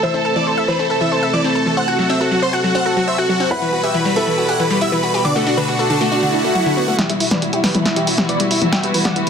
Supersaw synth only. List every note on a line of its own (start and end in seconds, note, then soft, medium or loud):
0.03 0.13 E5 medium
0.14 0.24 A4 medium
0.25 0.35 A4 medium
0.36 0.45 D5 medium
0.47 0.56 A4 medium
0.57 0.67 A4 medium
0.68 0.78 B4 medium
0.79 0.89 A4 medium
0.90 1.00 A4 medium
1.01 1.10 E5 medium
1.12 1.21 A4 medium
1.23 1.32 A4 medium
1.33 1.43 D5 medium
1.44 1.54 A4 medium
1.55 1.65 A4 medium
1.66 1.76 A4 medium
1.77 1.87 F#5 medium
1.88 1.98 F#4 medium
1.99 2.09 F#4 medium
2.10 2.19 E5 medium
2.21 2.30 F#4 medium
2.32 2.41 F#4 medium
2.42 2.52 C5 medium
2.53 2.63 F#4 medium
2.64 2.74 F#4 medium
2.75 2.85 F#5 medium
2.86 2.95 F#4 medium
2.96 3.06 F#4 medium
3.08 3.17 E5 medium
3.18 3.28 F#4 medium
3.29 3.39 F#4 medium
3.40 3.50 F#4 medium
3.51 3.61 F#5 medium
3.62 3.71 B4 medium
3.73 3.82 B4 medium
3.83 3.93 E5 medium
3.94 4.04 B4 medium
4.05 4.15 B4 medium
4.16 4.26 B4 medium
4.27 4.37 B4 medium
4.38 4.48 B4 medium
4.48 4.58 F#5 medium
4.59 4.69 B4 medium
4.70 4.80 B4 medium
4.81 4.91 E5 medium
4.92 5.02 B4 medium
5.03 5.13 B4 medium
5.14 5.24 B4 medium
5.25 5.34 D5 medium
5.35 5.45 F#4 medium
5.46 5.56 F#4 medium
5.57 5.67 B4 medium
5.68 5.78 F#4 medium
5.79 5.89 F#4 medium
5.90 6.00 A4 medium
6.01 6.11 F#4 medium
6.12 6.21 F#4 medium
6.23 6.32 F#4 medium
6.33 6.43 F#4 medium
6.44 6.54 F#4 medium
6.55 6.65 F#4 medium
6.66 6.76 F#4 medium
6.77 6.87 F#4 medium
6.88 6.98 F#4 medium
6.99 7.08 G4 medium
6.99 7.08 E5 medium
7.09 7.19 E4 medium
7.20 7.30 E4 medium
7.31 7.41 B4 medium
7.31 7.41 D5 medium
7.42 7.52 E4 medium
7.53 7.63 E4 medium
7.64 7.74 G4 medium
7.64 7.74 B4 medium
7.75 7.85 E4 medium
7.86 7.95 E4 medium
7.96 8.06 G4 medium
7.96 8.06 E5 medium
8.08 8.17 E4 medium
8.18 8.28 E4 medium
8.29 8.39 B4 medium
8.29 8.39 D5 medium
8.40 8.50 E4 medium
8.51 8.61 E4 medium
8.62 8.71 E4 medium
8.73 8.82 E5 medium
8.73 8.82 G5 medium
8.83 8.93 B4 medium
8.94 9.04 B4 medium
9.05 9.15 D5 medium
9.05 9.15 F#5 medium
9.16 9.26 B4 medium